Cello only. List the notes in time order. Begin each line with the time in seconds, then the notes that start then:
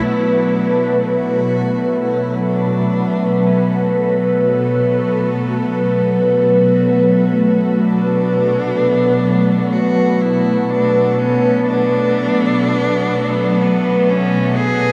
0.06 D4
0.11 E4
0.22 D4
1.05 F#4
2.01 E4
2.49 D4
3.46 C#4
3.94 B3
7.80 D4
9.72 F#4
10.22 E4
10.70 D4
11.11 D4
11.18 C#4
11.67 D4
13.61 B3
14.10 C#4
14.57 G#4